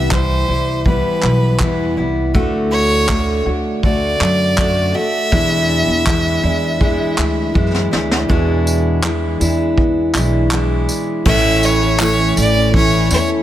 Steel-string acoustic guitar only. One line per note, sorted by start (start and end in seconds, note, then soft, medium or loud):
0.00 0.11 C3 medium
0.00 0.10 G3 medium
0.00 0.12 B3 medium
0.00 0.12 E4 medium
0.11 0.48 E3 medium
0.11 0.49 G3 soft
0.11 0.47 E4 medium
0.48 0.85 G3 soft
0.48 0.86 E4 soft
0.85 1.59 E3 soft
0.85 1.59 G3 medium
0.85 1.60 B3 medium
0.85 1.61 E4 medium
1.60 1.97 E3 soft
1.60 1.98 G3 medium
1.60 1.97 B3 medium
1.60 1.96 E4 medium
1.97 2.35 G3 soft
1.97 2.35 B3 soft
1.97 2.34 E4 medium
2.34 3.08 D3 medium
2.34 3.08 A3 medium
2.34 3.10 D4 medium
2.34 3.10 F#4 medium
3.08 3.46 D3 soft
3.08 3.46 A3 medium
3.08 3.46 D4 medium
3.08 3.44 F#4 medium
3.46 3.83 A3 soft
3.46 3.83 D4 soft
3.46 3.83 F#4 soft
3.83 4.57 D3 medium
3.83 4.57 A3 medium
3.83 4.59 D4 medium
3.83 4.59 F#4 medium
4.57 4.95 D3 medium
4.57 4.95 A3 medium
4.57 4.95 D4 medium
4.57 4.93 F#4 medium
4.95 5.32 A3 soft
4.95 5.32 D4 soft
4.95 5.32 F#4 medium
5.32 6.06 E2 medium
5.32 6.06 B2 medium
5.32 6.05 E3 medium
5.32 6.06 G#3 medium
5.32 6.07 D4 medium
5.32 6.07 E4 medium
6.05 6.43 E3 medium
6.05 6.44 G#3 medium
6.05 6.43 D4 medium
6.05 6.42 E4 medium
6.43 6.79 E3 soft
6.43 6.80 G#3 soft
6.43 6.81 D4 medium
6.43 6.81 E4 medium
6.80 7.54 E3 medium
6.80 7.55 G#3 medium
6.80 7.56 D4 medium
6.80 7.56 E4 medium
7.54 7.92 E3 medium
7.54 7.92 G#3 medium
7.54 7.91 D4 medium
7.54 7.90 E4 medium
7.91 8.28 E3 soft
7.91 8.29 G#3 soft
7.91 8.29 D4 medium
7.91 8.29 E4 medium
8.29 9.03 E2 medium
8.29 9.03 B2 medium
8.29 9.02 E3 medium
8.29 9.03 G#3 medium
8.29 9.03 D4 loud
8.29 9.05 E4 loud
9.03 9.40 E3 medium
9.03 9.41 G#3 medium
9.03 9.41 D4 medium
9.03 9.39 E4 medium
9.41 10.16 E3 soft
9.41 10.15 G#3 medium
9.41 10.14 D4 medium
9.41 10.14 E4 medium
10.14 10.50 E3 soft
10.14 10.51 G#3 medium
10.14 10.52 D4 medium
10.14 10.52 E4 medium
10.51 11.26 E3 medium
10.51 11.26 G#3 medium
10.51 11.27 D4 medium
10.51 11.27 E4 medium
11.25 11.99 A2 medium
11.25 12.00 E3 medium
11.25 12.00 A3 medium
11.25 12.01 C#4 medium
11.25 12.01 E4 medium
12.00 12.74 A2 medium
12.00 12.73 E3 medium
12.00 12.73 A3 medium
12.00 12.76 E4 medium
12.74 13.11 E3 medium
12.74 13.11 A3 medium
12.74 13.11 C#4 medium
12.74 13.10 E4 medium
13.11 13.43 A3 soft
13.11 13.43 C#4 soft
13.11 13.43 E4 medium